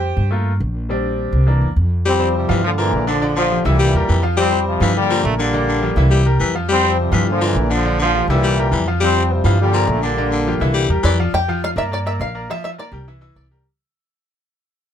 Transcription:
Already playing: upright bass F2, grand piano G4 C5 G5
0.17 upright bass G2
0.31 grand piano A3 A#3 F4
0.60 upright bass A#1
0.89 grand piano G3 C4 D4
1.32 upright bass C2
1.46 grand piano E3 A#3 D4
1.61 upright bass E2
1.76 upright bass F2
2.06 trombone section F3 G3 C4, baritone saxophone G3
2.20 grand piano C4 C5
2.35 trombone section C3 G3
2.49 upright bass G2, baritone saxophone E3, grand piano F3 F4 F5
2.64 trombone section A#2 D3 F3
2.78 trombone section A#2 E3, baritone saxophone F3, grand piano A#3 A#4 D5
2.93 upright bass A#1
3.07 grand piano D3 D4 D5, baritone saxophone D3, trombone section D3 F3
3.21 grand piano D3 D4 D5
3.36 baritone saxophone D3, trombone section D3 F3
3.51 grand piano F3 F4 G4
3.65 upright bass C2, trombone section A#2 E3 G3, grand piano E3 E4 E5
3.79 baritone saxophone G3
3.94 upright bass E2, grand piano G3 G4 A#4
4.08 upright bass F2, baritone saxophone E3
4.23 grand piano F3 F4 F5
4.37 trombone section F3 G3 C4, baritone saxophone G3
4.51 grand piano C4 C5
4.66 trombone section C3 F3
4.80 upright bass G2, baritone saxophone E3, grand piano F3 F4 F5
4.94 trombone section A#2 D3 G3
5.10 baritone saxophone F3, grand piano A#3 A#4 D5
5.24 upright bass A#1, trombone section A3
5.38 trombone section D3 G3 A#3, baritone saxophone D3, grand piano D3 D4 D5
5.53 grand piano D3 D4 D5
5.68 baritone saxophone D3
5.82 grand piano F3 F4 G4
5.96 upright bass C2, grand piano E3 E4 E5
6.11 baritone saxophone G3
6.26 grand piano G3 G4 A#4
6.40 upright bass F2, baritone saxophone E3
6.55 grand piano F3 F4 F5
6.69 trombone section F3 G3 C4, baritone saxophone G3
6.84 grand piano C4 C5
7.00 trombone section C3 G3
7.12 upright bass G2, baritone saxophone E3, grand piano F3 F4 F5
7.28 trombone section A#2 D3 F3
7.41 trombone section A#2 E3, baritone saxophone F3, grand piano A#3 A#4 D5
7.55 upright bass A#1
7.70 grand piano D3 D4 D5, baritone saxophone D3, trombone section D3 F3
7.85 grand piano D3 D4 D5
7.99 baritone saxophone D3, trombone section D3 F3
8.15 grand piano F3 F4 G4
8.28 upright bass C2, trombone section A#2 E3 G3, grand piano E3 E4 E5
8.43 baritone saxophone G3
8.59 grand piano G3 G4 A#4
8.72 upright bass F2, baritone saxophone E3
8.87 grand piano F3 F4 F5
9.00 trombone section F3 G3 C4, baritone saxophone G3
9.17 grand piano C4 C5
9.30 trombone section C3 F3
9.44 upright bass G2, baritone saxophone E3, grand piano F3 F4 F5
9.59 trombone section A#2 D3 G3
9.73 baritone saxophone F3, grand piano A#3 A#4 D5
9.88 upright bass A#1, trombone section A3
10.02 baritone saxophone D3, trombone section D3 G3 A#3, grand piano D3 D4 D5
10.17 grand piano D3 D4 D5
10.32 baritone saxophone D3
10.47 grand piano F3 F4 G4
10.60 upright bass C2, grand piano E3 E4 E5
10.74 baritone saxophone G3
10.89 upright bass E2, grand piano G3 G4 A#4
11.03 upright bass F2, baritone saxophone E3, five-string banjo D5
11.20 grand piano F3 F4 F5
11.33 upright bass F2, five-string banjo G4 G5
11.48 grand piano F3 F4 F5
11.64 five-string banjo F5
11.76 upright bass G2, grand piano A#3 A#4 D5, five-string banjo E5
11.91 grand piano A#3 A#4 D5, five-string banjo D5
12.06 grand piano A#3 A#4 D5, five-string banjo E5
12.20 upright bass A#1, five-string banjo F5
12.35 grand piano A#3 A#4 D5
12.50 grand piano F3 F4 F5, five-string banjo E5
12.64 five-string banjo E5
12.78 grand piano A#3 A#4 D5, five-string banjo D5
12.92 upright bass C2, grand piano G3 G4 A#4
13.08 grand piano E3 E4 E5
13.21 grand piano E3 E4 E5
13.36 upright bass C2, five-string banjo D5
13.51 grand piano G3 G4 A#4

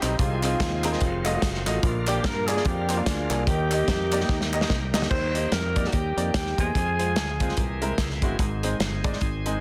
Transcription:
Already playing: tonewheel organ G3 C4 D#4 G4, horn section C4
0.01 fingered electric bass B1, grand piano C4 D#4 G4 D#5, horn section D#4, clap, closed hi-hat
0.17 fingered electric bass C2, grand piano C3, tonewheel organ D#3 G#3 C4 G#4, horn section G#3 C4 F4, kick, closed hi-hat
0.43 grand piano C4 D#4 G#4 D#5, clap, closed hi-hat
0.60 fingered electric bass D#2, kick, snare, closed hi-hat
0.84 grand piano C4 D#4 G#4 A#4, clap, closed hi-hat
0.92 grand piano C4 D#4 G#4 D#5, snare
1.00 fingered electric bass F1, tonewheel organ D#3 F#3 C4 F4, kick, closed hi-hat
1.25 grand piano A3 F4 F#4 D#5, clap, closed hi-hat
1.34 grand piano A3 F4 F#4 D#5
1.42 fingered electric bass F#1, kick, snare, closed hi-hat
1.54 snare
1.66 fingered electric bass A1, grand piano A3 F4 F#4 D#5, clap, closed hi-hat
1.82 fingered electric bass A#1, grand piano A#2, tonewheel organ D3 F3 A#3 F4, kick, closed hi-hat
2.07 grand piano A#3 D4 F4 D5, horn section G4, clap, closed hi-hat
2.24 fingered electric bass G2, horn section A#4, kick, snare, closed hi-hat
2.47 grand piano A#3 D4 F4 D5, horn section G#4, clap, closed hi-hat
2.56 grand piano A#3 D4 F4 D5, snare
2.64 fingered electric bass F2, horn section A#3 D4 G4, kick, closed hi-hat
2.89 grand piano A#3 D4 F4 C5, clap, closed hi-hat
2.97 grand piano A#3 D4 F4 D5, horn section F4
3.05 fingered electric bass D2, horn section D4 F4 G#4, kick, snare, closed hi-hat
3.30 fingered electric bass C2, grand piano A#3 D4 F4 G#4, clap, closed hi-hat
3.46 fingered electric bass D#2, grand piano D#3, tonewheel organ D#3 G3 A#3 G4, horn section A#3 D#4 G4, kick, closed hi-hat
3.71 grand piano A#3 D#4 G4 D#5, clap, closed hi-hat
3.88 fingered electric bass F2, kick, snare, closed hi-hat
4.12 grand piano A#3 D#4 G4 D5, clap, closed hi-hat
4.20 grand piano A#3 D#4 G4 D#5, snare
4.29 fingered electric bass D#2, kick, snare
4.41 snare
4.53 grand piano A#3 D#4 G4 D#5, clap
4.61 grand piano A#3 D#4 G4 D#5, snare
4.70 fingered electric bass C2, kick, snare
4.94 fingered electric bass D2, grand piano A#3 D#4 G4 D#5, snare, clap
5.02 snare
5.11 fingered electric bass D#2, tonewheel organ D#3 G3 A#3 F4, grand piano D#3, alto saxophone C5, kick, crash
5.16 tonewheel organ G4
5.35 grand piano A#3 D#4 G4 D#5, closed hi-hat
5.52 fingered electric bass F2, alto saxophone A#4, snare, closed hi-hat
5.76 grand piano A#3 D#4 G4 D5, kick, closed hi-hat
5.84 alto saxophone F#4, snare
5.93 fingered electric bass D#2, alto saxophone G4, kick, closed hi-hat
6.17 fingered electric bass F2, grand piano A#3 D#4 G4 D5, closed hi-hat
6.34 fingered electric bass D#2, alto saxophone G4, kick, snare, closed hi-hat
6.46 snare
6.58 fingered electric bass E2, grand piano A#3 D#4 G4 C5, alto saxophone G#4, kick, closed hi-hat
6.75 fingered electric bass F2, tonewheel organ F3 G#3 C4 G4, kick, closed hi-hat
6.80 tonewheel organ G#4
6.99 grand piano G#3 C4 F4 C5, closed hi-hat
7.16 fingered electric bass D2, snare, closed hi-hat
7.40 grand piano G#3 C4 F4 G#4, kick, closed hi-hat
7.49 snare
7.57 fingered electric bass C2, grand piano C3, tonewheel organ E3 A#3 C4 G#4, kick, closed hi-hat
7.82 grand piano G#3 C4 E4 A#4, closed hi-hat
7.98 fingered electric bass C#2, kick, snare, closed hi-hat
8.10 snare
8.22 fingered electric bass G1, grand piano G#3 C4 E4 F#4, kick, closed hi-hat
8.39 fingered electric bass G#1, grand piano G#2, tonewheel organ D#3 G#3 B3 G#4, kick, closed hi-hat
8.44 tonewheel organ C4
8.63 grand piano G#3 C4 D#4 C5, closed hi-hat
8.80 fingered electric bass G1, snare, closed hi-hat
9.04 grand piano G#3 C4 D#4 D5, kick, closed hi-hat
9.13 snare
9.21 fingered electric bass G#1, kick, closed hi-hat
9.46 grand piano G#3 C4 D#4 G#4, closed hi-hat

